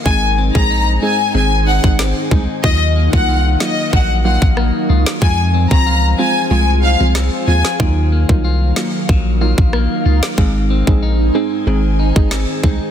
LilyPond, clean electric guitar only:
\new Staff \with { instrumentName = "Clean electric guitar" } { \time 4/4 \key ees \dorian \tempo 4 = 93 aes,8 c'8 ees'8 c'8 ees8 ees'8 c'8 ees'8 | ees8 bes8 f'8 bes8 ges8 f'8 bes8 f'8 | f8 c'8 f'8 c'8 aes8 ees'16 f'16 c'8 f'8 | ees8 bes8 f'8 bes8 ges8 f'8 bes8 f'8 |
aes,8 c'8 ees'8 c'8 ees8 ees'8 c'8 ees'8 | }